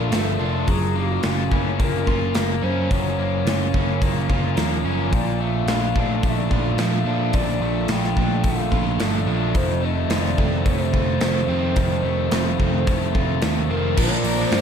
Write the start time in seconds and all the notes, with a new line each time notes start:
Already playing: F3 A3 D4 F4
0.11 G1 F3 A3, snare, open hi-hat
0.39 F1 F3 D4 F4
0.68 F#1 F#2 F#3 G#4, kick, open hi-hat
0.95 C#3 A#3 F#4
1.23 F#1 C#4 F4, snare, open hi-hat
1.51 F#1 A#3 C#4, kick
1.79 F#1 C#3 F3 A#3 A#4, kick, open hi-hat
2.06 F#1 A#3 C#4 F4, kick
2.35 F#1 A#3, snare, open hi-hat
2.62 F#2 C#4 C5
2.90 F#1 F#2 F#3 C#5, kick, open hi-hat
3.18 F#1 C#3 A#3
3.45 F#1 C#4 F4, snare, open hi-hat
3.74 F#1 A#3 C#4, kick
4.01 F#1 C#3 F3 A#3, kick, open hi-hat
4.29 F#1 A#3 C#4 F4, kick
4.56 D#2 F3 A#3, snare, open hi-hat
4.84 F#1 F3 C#4
5.12 A#1 A#2 F3 D5, kick, open hi-hat
5.40 A#2 F3 A3 F5
5.67 A#1 F3 D4 F4, snare, open hi-hat
5.95 A#1 A3 D4, kick
6.23 A#1 A#2 F3 A3 D5, kick, open hi-hat
6.50 A#1 A3 D4 F4, kick
6.77 A#1 F3 A3 F5, snare, open hi-hat
7.05 A#2 F3 D4
7.33 A#1 A#2 F3 D5, kick, open hi-hat
7.61 A#1 A#2 F3 A3
7.88 A#1 F3 D4 F4 G5, snare, open hi-hat
8.04 snare
8.17 A#1 A3 D4, kick
8.43 A#1 A#2 F3 A3 F5, kick, open hi-hat
8.71 A#1 A3 D4 F4, kick
8.99 G1 F3 A3, snare, open hi-hat
9.26 A#1 F3 D4
9.54 F1 F2 D#3 C5, kick, open hi-hat
9.82 C3 D#3 A3 D#5
10.10 F1 D#3 C4 F4 D5, snare, open hi-hat
10.25 snare
10.37 F1 A3 C4, kick
10.65 F1 C3 D#3 A3 C5, kick, open hi-hat
10.93 F1 A3 C4 F4, kick
11.20 F1 D#3 A3, snare, open hi-hat
11.48 F2 D#3 C4
11.76 F1 F2 D#3, kick, open hi-hat
12.03 F1 C3 D#3 A3
12.30 F1 D#3 C4 F4, snare, open hi-hat
12.59 F1 A3 C4, kick
12.87 F1 C3 D#3 A3, kick, open hi-hat
13.14 F1 A3 C4 F4, kick
13.42 D#2 D#3 A3, snare, open hi-hat
13.69 F1 D#3 C4 A#4
13.96 A#1 A#2 D3 F3 A#3 D4 F4 A#4 C5 D5 A#5 D6, kick, crash
14.12 muted overdriven electric guitar stroke
14.24 A#1 F3 A#3 D4 F4 A#4, open hi-hat
14.38 F3 A#3 D4
14.51 G2 A#2 D3 F3 A#3 D4 F4 A#4, snare, open hi-hat